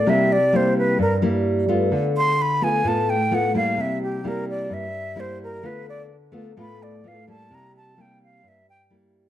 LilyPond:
<<
  \new Staff \with { instrumentName = "Flute" } { \time 4/4 \key c \mixolydian \tempo 4 = 129 e''8 d''8 c''8 b'8 bes'8 r4. | r8 c'''8 b''8 gis''8 a''8 g''8 fis''8 f''8 | e''8 g'8 bes'8 d''8 e''4 c''8 bes'8 | b'8 d''8 r4 b''8 d''8 f''8 a''8 |
bes''8 a''8 g''8 f''8 e''8 g''8 r4 | }
  \new Staff \with { instrumentName = "Nylon-string guitar" } { \time 4/4 \key c \mixolydian << { <g bes e'>8 r8 <g bes e'>4 r8 <g bes e'>4 <a b f'>8~ | <a b f'>4 r8 <a b f'>8 <a b f'>8 r8 <a b f'>8 <g bes e'>8~ | <g bes e'>4 <g bes e'>4. r8 <g bes e'>4 | <a b f'>4 r8 <a b f'>8 <a b f'>4 <a b f'>8 <g bes e'>8~ |
<g bes e'>4 <g bes e'>4. r8 <g bes e'>4 | } \\ { c2 g,2 | d2 a,2 | c2 g,2 | d2 a,2 |
c2 g,2 | } >> }
>>